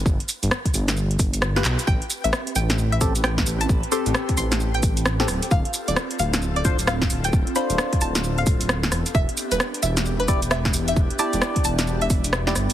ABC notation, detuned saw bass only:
X:1
M:4/4
L:1/16
Q:"Swing 16ths" 1/4=132
K:Ephr
V:1 name="Detuned saw bass" clef=bass
G,,, z2 G,,, z2 G,,,4 G,,,4 B,,, z | A,,, z2 A,,, z2 A,,,4 A,,,4 A,,,2 | A,,, z2 A,,, z2 A,,,4 A,,,4 D,,, z | D,,, z2 D,,, z2 D,,,4 D,,,4 D,,,2 |
D,,, z2 D,,, z2 D,,,4 D,,,4 E,,, z | E,,, z2 E,,, z2 E,,,4 E,,,4 E,,,2 | E,,, z2 E,,, z2 E,,,4 E,,,4 G,,, z |]